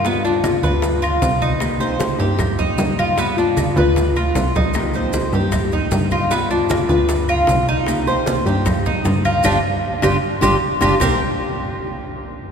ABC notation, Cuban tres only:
X:1
M:4/4
L:1/8
Q:1/4=153
K:Cm
V:1 name="Cuban tres"
=B, D2 =B2 F2 E- | E c2 G2 E2 F | =B, D2 =B2 F2 E- | E c2 G2 E2 F |
=B, D2 =B2 F2 E- | E c2 G2 E2 F | [DFG] z2 [DFG] z [DFG] z [DFG] | [CGB] z6 z |]